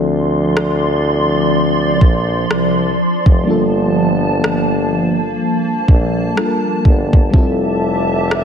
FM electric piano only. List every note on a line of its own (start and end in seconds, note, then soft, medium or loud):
0.00 3.41 F3 medium
0.00 3.42 C4 medium
0.00 3.43 D4 medium
0.00 3.44 E4 medium
0.00 3.45 A4 medium
3.43 6.31 G3 medium
3.43 6.32 A#3 medium
3.43 6.33 D4 medium
3.49 6.34 F4 medium
3.49 6.35 A4 medium
6.35 7.29 G3 medium
6.35 7.33 A#3 medium
6.35 7.34 D4 medium
6.35 7.34 F4 soft
6.35 6.45 A4 soft
6.46 7.38 A#4 medium
7.30 8.44 G3 medium
7.30 8.44 C4 medium
7.30 8.44 E4 medium
7.36 8.44 F4 medium
7.36 8.44 A4 medium